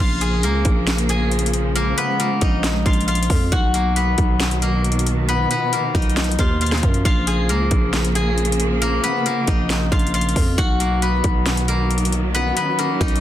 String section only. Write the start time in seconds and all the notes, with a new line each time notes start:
0.00 C#3 F3 A#3
1.76 G#3
3.52 B2 D#3 F#3
5.29 F3
7.05 C#3 A#3
10.58 B2 D#3 F#3
12.35 C#4